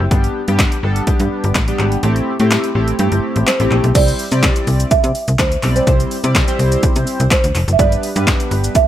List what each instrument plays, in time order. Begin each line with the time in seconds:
0.00 fm bass F#1
0.11 fm bass G1, analog polysynth G3 B3 D4 G4, kick, closed hi-hat
0.24 closed hi-hat
0.48 fm bass G2, analog polysynth G3 B3 D4 G4, closed hi-hat
0.59 kick, snare, clap, closed hi-hat
0.72 closed hi-hat
0.83 fm bass G1, analog polysynth G3 B3 D4 A4
0.96 closed hi-hat
1.07 fm bass G2, analog polysynth G3 B3 D4 G4, kick, closed hi-hat
1.20 fm bass G2, closed hi-hat
1.44 fm bass G1, closed hi-hat
1.55 fm bass A1, kick, snare, clap, closed hi-hat
1.68 analog polysynth G3 B3 D4 G4, closed hi-hat
1.79 fm bass G#1, clap
1.92 closed hi-hat
2.03 fm bass A1, analog polysynth A3 C4 E4 G4, closed hi-hat
2.16 closed hi-hat
2.40 fm bass A2, analog polysynth A3 C4 E4 G4, closed hi-hat
2.51 snare, clap, closed hi-hat
2.64 closed hi-hat
2.75 fm bass A1, analog polysynth A3 C4 E4 G4
2.88 closed hi-hat
2.99 fm bass G2, analog polysynth A3 C4 E4 G4, closed hi-hat
3.12 fm bass G1, closed hi-hat
3.36 fm bass A1, closed hi-hat
3.47 marimba C5, snare, clap, closed hi-hat
3.60 fm bass A1, analog polysynth A3 C4 E4 G4, closed hi-hat
3.71 fm bass A#1, clap
3.84 fm bass B1, closed hi-hat
3.95 fm bass C2, analog polysynth G3 C4 E4 G4 C5, marimba D5, kick, closed hi-hat, crash, shaker
4.08 closed hi-hat, shaker
4.19 open hi-hat, shaker
4.32 fm bass C3, analog polysynth G3 C4 E4 G4 D5, closed hi-hat, shaker
4.43 kick, snare, clap, closed hi-hat, shaker
4.56 closed hi-hat, shaker
4.67 fm bass C2, open hi-hat, shaker
4.80 closed hi-hat, shaker
4.91 fm bass C3, marimba E5, kick, closed hi-hat, shaker
5.04 fm bass C3, closed hi-hat, shaker
5.15 open hi-hat, shaker
5.28 fm bass C2, closed hi-hat, shaker
5.39 fm bass D2, marimba C5, kick, snare, clap, closed hi-hat, shaker
5.52 closed hi-hat, shaker
5.63 fm bass B1, analog polysynth G3 C4 E4 G4 D5, clap, open hi-hat, shaker
5.76 marimba C5, closed hi-hat, shaker
5.87 fm bass C2, analog polysynth G3 C4 E4 G4 C5, kick, closed hi-hat, shaker
6.00 closed hi-hat, shaker
6.11 open hi-hat, shaker
6.24 fm bass C3, analog polysynth G3 C4 E4 G4 D5, closed hi-hat, shaker
6.35 kick, snare, clap, closed hi-hat, shaker
6.48 analog polysynth G3 C4 E4 G4 C5, closed hi-hat, shaker
6.59 fm bass C2, open hi-hat, shaker
6.72 closed hi-hat, shaker
6.83 fm bass C3, kick, closed hi-hat, shaker
6.96 fm bass C3, closed hi-hat, shaker
7.07 open hi-hat, shaker
7.20 fm bass C2, closed hi-hat, shaker
7.31 marimba C5, kick, snare, clap, closed hi-hat, shaker
7.44 fm bass D2, closed hi-hat, shaker
7.55 fm bass F1, clap, open hi-hat, shaker
7.68 fm bass F#1, closed hi-hat, shaker
7.73 marimba E5
7.79 fm bass G1, analog polysynth G3 B3 D4 G4 B4, marimba D5, kick, closed hi-hat, shaker
7.92 closed hi-hat, shaker
8.03 open hi-hat, shaker
8.15 fm bass G2, analog polysynth G3 B3 D4 G4 B4, closed hi-hat, shaker
8.27 kick, snare, clap, closed hi-hat, shaker
8.40 closed hi-hat, shaker
8.51 fm bass G1, open hi-hat, shaker
8.64 closed hi-hat, shaker
8.75 fm bass G2, marimba E5, kick, closed hi-hat, shaker